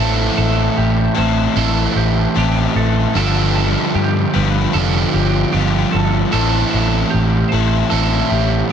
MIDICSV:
0, 0, Header, 1, 5, 480
1, 0, Start_track
1, 0, Key_signature, 0, "minor"
1, 0, Tempo, 793651
1, 1906, Time_signature, 4, 2, 24, 8
1, 5274, End_track
2, 0, Start_track
2, 0, Title_t, "Clean electric guitar"
2, 0, Program_c, 0, 27
2, 0, Note_on_c, 0, 69, 91
2, 220, Note_off_c, 0, 69, 0
2, 227, Note_on_c, 0, 69, 72
2, 467, Note_off_c, 0, 69, 0
2, 472, Note_on_c, 0, 67, 79
2, 713, Note_on_c, 0, 72, 74
2, 948, Note_off_c, 0, 72, 0
2, 950, Note_on_c, 0, 69, 78
2, 968, Note_off_c, 0, 67, 0
2, 1188, Note_off_c, 0, 69, 0
2, 1191, Note_on_c, 0, 67, 76
2, 1439, Note_off_c, 0, 67, 0
2, 1439, Note_on_c, 0, 67, 78
2, 1670, Note_off_c, 0, 67, 0
2, 1672, Note_on_c, 0, 69, 68
2, 1909, Note_off_c, 0, 69, 0
2, 1916, Note_on_c, 0, 69, 90
2, 2138, Note_off_c, 0, 69, 0
2, 2146, Note_on_c, 0, 69, 72
2, 2386, Note_off_c, 0, 69, 0
2, 2391, Note_on_c, 0, 67, 84
2, 2632, Note_on_c, 0, 71, 80
2, 2865, Note_off_c, 0, 71, 0
2, 2867, Note_on_c, 0, 69, 81
2, 2886, Note_off_c, 0, 67, 0
2, 3104, Note_on_c, 0, 67, 81
2, 3107, Note_off_c, 0, 69, 0
2, 3342, Note_off_c, 0, 67, 0
2, 3342, Note_on_c, 0, 67, 76
2, 3579, Note_off_c, 0, 67, 0
2, 3581, Note_on_c, 0, 69, 75
2, 3817, Note_off_c, 0, 69, 0
2, 3825, Note_on_c, 0, 69, 90
2, 4049, Note_off_c, 0, 69, 0
2, 4056, Note_on_c, 0, 69, 73
2, 4296, Note_on_c, 0, 67, 85
2, 4301, Note_off_c, 0, 69, 0
2, 4529, Note_on_c, 0, 72, 74
2, 4775, Note_off_c, 0, 72, 0
2, 4777, Note_on_c, 0, 69, 85
2, 4796, Note_off_c, 0, 67, 0
2, 5018, Note_on_c, 0, 67, 73
2, 5022, Note_off_c, 0, 69, 0
2, 5274, Note_off_c, 0, 67, 0
2, 5274, End_track
3, 0, Start_track
3, 0, Title_t, "Overdriven electric guitar"
3, 0, Program_c, 1, 29
3, 945, Note_on_c, 1, 45, 73
3, 947, Note_on_c, 1, 52, 79
3, 951, Note_on_c, 1, 60, 74
3, 958, Note_on_c, 1, 64, 84
3, 964, Note_on_c, 1, 69, 81
3, 1891, Note_off_c, 1, 45, 0
3, 1892, Note_off_c, 1, 52, 0
3, 1894, Note_off_c, 1, 60, 0
3, 1898, Note_off_c, 1, 64, 0
3, 1901, Note_off_c, 1, 69, 0
3, 2861, Note_on_c, 1, 43, 67
3, 2863, Note_on_c, 1, 50, 71
3, 2868, Note_on_c, 1, 53, 72
3, 2872, Note_on_c, 1, 59, 83
3, 2876, Note_on_c, 1, 65, 77
3, 2878, Note_on_c, 1, 67, 78
3, 3809, Note_off_c, 1, 43, 0
3, 3810, Note_off_c, 1, 50, 0
3, 3813, Note_off_c, 1, 53, 0
3, 3815, Note_off_c, 1, 59, 0
3, 3816, Note_off_c, 1, 65, 0
3, 3840, Note_off_c, 1, 67, 0
3, 4779, Note_on_c, 1, 45, 72
3, 4783, Note_on_c, 1, 52, 75
3, 4786, Note_on_c, 1, 60, 73
3, 4794, Note_on_c, 1, 64, 79
3, 4796, Note_on_c, 1, 69, 79
3, 5274, Note_off_c, 1, 45, 0
3, 5274, Note_off_c, 1, 52, 0
3, 5274, Note_off_c, 1, 60, 0
3, 5274, Note_off_c, 1, 64, 0
3, 5274, Note_off_c, 1, 69, 0
3, 5274, End_track
4, 0, Start_track
4, 0, Title_t, "Overdriven electric guitar"
4, 0, Program_c, 2, 29
4, 0, Note_on_c, 2, 45, 98
4, 0, Note_on_c, 2, 52, 96
4, 0, Note_on_c, 2, 60, 86
4, 0, Note_on_c, 2, 64, 103
4, 0, Note_on_c, 2, 69, 104
4, 686, Note_off_c, 2, 45, 0
4, 686, Note_off_c, 2, 69, 0
4, 689, Note_off_c, 2, 64, 0
4, 690, Note_off_c, 2, 52, 0
4, 691, Note_off_c, 2, 60, 0
4, 693, Note_on_c, 2, 69, 87
4, 696, Note_on_c, 2, 64, 84
4, 701, Note_on_c, 2, 60, 69
4, 702, Note_on_c, 2, 52, 73
4, 703, Note_on_c, 2, 45, 68
4, 1405, Note_off_c, 2, 69, 0
4, 1407, Note_off_c, 2, 64, 0
4, 1409, Note_off_c, 2, 60, 0
4, 1410, Note_off_c, 2, 52, 0
4, 1411, Note_off_c, 2, 45, 0
4, 1419, Note_on_c, 2, 52, 80
4, 1420, Note_on_c, 2, 45, 72
4, 1426, Note_on_c, 2, 60, 80
4, 1428, Note_on_c, 2, 69, 89
4, 1429, Note_on_c, 2, 64, 86
4, 1889, Note_off_c, 2, 45, 0
4, 1889, Note_off_c, 2, 52, 0
4, 1892, Note_off_c, 2, 60, 0
4, 1893, Note_off_c, 2, 64, 0
4, 1893, Note_off_c, 2, 69, 0
4, 1899, Note_on_c, 2, 43, 92
4, 1900, Note_on_c, 2, 50, 96
4, 1905, Note_on_c, 2, 53, 100
4, 1905, Note_on_c, 2, 59, 98
4, 1911, Note_on_c, 2, 65, 114
4, 1912, Note_on_c, 2, 67, 108
4, 2608, Note_off_c, 2, 43, 0
4, 2609, Note_off_c, 2, 50, 0
4, 2611, Note_off_c, 2, 53, 0
4, 2611, Note_off_c, 2, 59, 0
4, 2614, Note_off_c, 2, 65, 0
4, 2620, Note_off_c, 2, 67, 0
4, 2623, Note_on_c, 2, 67, 85
4, 2625, Note_on_c, 2, 59, 80
4, 2626, Note_on_c, 2, 65, 82
4, 2631, Note_on_c, 2, 43, 72
4, 2631, Note_on_c, 2, 50, 77
4, 2631, Note_on_c, 2, 53, 77
4, 3328, Note_off_c, 2, 43, 0
4, 3331, Note_off_c, 2, 59, 0
4, 3332, Note_off_c, 2, 65, 0
4, 3334, Note_off_c, 2, 50, 0
4, 3334, Note_off_c, 2, 53, 0
4, 3335, Note_on_c, 2, 43, 73
4, 3342, Note_on_c, 2, 53, 81
4, 3343, Note_on_c, 2, 50, 72
4, 3347, Note_off_c, 2, 67, 0
4, 3349, Note_on_c, 2, 59, 89
4, 3349, Note_on_c, 2, 67, 82
4, 3350, Note_on_c, 2, 65, 91
4, 3806, Note_off_c, 2, 43, 0
4, 3810, Note_off_c, 2, 50, 0
4, 3810, Note_off_c, 2, 53, 0
4, 3813, Note_off_c, 2, 59, 0
4, 3814, Note_off_c, 2, 65, 0
4, 3820, Note_on_c, 2, 45, 91
4, 3825, Note_on_c, 2, 52, 92
4, 3829, Note_off_c, 2, 67, 0
4, 3830, Note_on_c, 2, 64, 107
4, 3831, Note_on_c, 2, 60, 95
4, 3832, Note_on_c, 2, 69, 104
4, 4529, Note_off_c, 2, 45, 0
4, 4532, Note_off_c, 2, 52, 0
4, 4534, Note_off_c, 2, 60, 0
4, 4534, Note_off_c, 2, 64, 0
4, 4535, Note_off_c, 2, 69, 0
4, 4548, Note_on_c, 2, 69, 84
4, 4553, Note_on_c, 2, 64, 86
4, 4558, Note_on_c, 2, 52, 69
4, 4558, Note_on_c, 2, 60, 68
4, 4563, Note_on_c, 2, 45, 67
4, 5252, Note_off_c, 2, 45, 0
4, 5253, Note_off_c, 2, 69, 0
4, 5256, Note_off_c, 2, 64, 0
4, 5257, Note_off_c, 2, 52, 0
4, 5258, Note_off_c, 2, 60, 0
4, 5274, End_track
5, 0, Start_track
5, 0, Title_t, "Fingered electric bass"
5, 0, Program_c, 3, 33
5, 0, Note_on_c, 3, 33, 91
5, 168, Note_off_c, 3, 33, 0
5, 230, Note_on_c, 3, 33, 82
5, 406, Note_off_c, 3, 33, 0
5, 469, Note_on_c, 3, 33, 84
5, 646, Note_off_c, 3, 33, 0
5, 712, Note_on_c, 3, 33, 81
5, 888, Note_off_c, 3, 33, 0
5, 946, Note_on_c, 3, 33, 93
5, 1124, Note_off_c, 3, 33, 0
5, 1183, Note_on_c, 3, 33, 78
5, 1362, Note_off_c, 3, 33, 0
5, 1430, Note_on_c, 3, 33, 86
5, 1607, Note_off_c, 3, 33, 0
5, 1666, Note_on_c, 3, 33, 86
5, 1844, Note_off_c, 3, 33, 0
5, 1906, Note_on_c, 3, 31, 92
5, 2261, Note_off_c, 3, 31, 0
5, 2387, Note_on_c, 3, 43, 88
5, 2565, Note_off_c, 3, 43, 0
5, 2635, Note_on_c, 3, 31, 87
5, 2809, Note_off_c, 3, 31, 0
5, 2867, Note_on_c, 3, 29, 92
5, 3045, Note_off_c, 3, 29, 0
5, 3107, Note_on_c, 3, 31, 79
5, 3284, Note_off_c, 3, 31, 0
5, 3349, Note_on_c, 3, 31, 80
5, 3526, Note_off_c, 3, 31, 0
5, 3592, Note_on_c, 3, 31, 83
5, 3768, Note_off_c, 3, 31, 0
5, 3830, Note_on_c, 3, 33, 90
5, 4006, Note_off_c, 3, 33, 0
5, 4075, Note_on_c, 3, 33, 88
5, 4249, Note_off_c, 3, 33, 0
5, 4318, Note_on_c, 3, 33, 97
5, 4492, Note_off_c, 3, 33, 0
5, 4553, Note_on_c, 3, 33, 82
5, 4728, Note_off_c, 3, 33, 0
5, 4789, Note_on_c, 3, 33, 93
5, 4966, Note_off_c, 3, 33, 0
5, 5029, Note_on_c, 3, 33, 78
5, 5206, Note_off_c, 3, 33, 0
5, 5274, End_track
0, 0, End_of_file